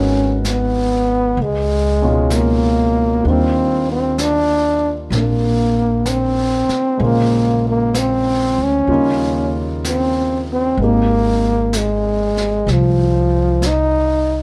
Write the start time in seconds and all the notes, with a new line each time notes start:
Already playing: G#1 G#3 B3 C#4 D#4 F#4 A#4
0.45 brush sweep, snare, hi-hat pedal
0.49 B3
1.37 C#2, brush sweep
1.42 G#3
2.02 B2 G#3 C#4 D#4 F4
2.30 A#3, brush sweep, snare, hi-hat pedal
3.24 D#2 G3 A#3 D4, brush sweep
3.28 D#3 C4 F4
3.92 C4
4.18 D4, brush sweep, snare, hi-hat pedal
5.10 A#1 A#3 C4, brush sweep, snare
5.14 A#3 D4
6.06 C4, brush sweep, snare, hi-hat pedal
6.68 muted upright bass stroke, snare
6.97 A#1 C#3 G#3 A#3 C5, brush sweep
7.03 A#3 F4
7.68 A#3
7.94 C4, brush sweep, snare, hi-hat pedal
8.58 D2
8.63 C#4
8.87 D#2 C#3 G3 A#3 D#4 F4, brush sweep
9.85 C4, brush sweep, snare, hi-hat pedal
10.53 C4
10.77 G#1 G#3 A#3 C4, brush sweep
10.82 A#3 D#4 G4
11.73 brush sweep, snare, hi-hat pedal
11.77 G#3
12.37 snare
12.67 C2, brush sweep, snare
12.71 F3
13.62 brush sweep, snare, hi-hat pedal
13.67 D#4